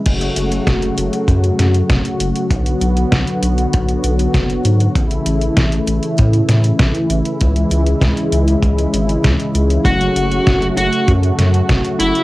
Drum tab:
CC |x---------------|----------------|----------------|----------------|
HH |xxxxxxxxxxxxxxxx|xxxxxxxxxxxxxxxx|xxxxxxxxxxxxxxxx|xxxxxxxxxxxxxxxx|
SD |----o-----o-o---|----o-------o---|----o-----o-o---|----o-------o---|
BD |o---o---o---o---|o---o---o---o---|o---o---o---o---|o---o---o---o---|

CC |----------------|
HH |xxxxxxxxxxxxxxxx|
SD |----o-----o-o---|
BD |o---o---o---o---|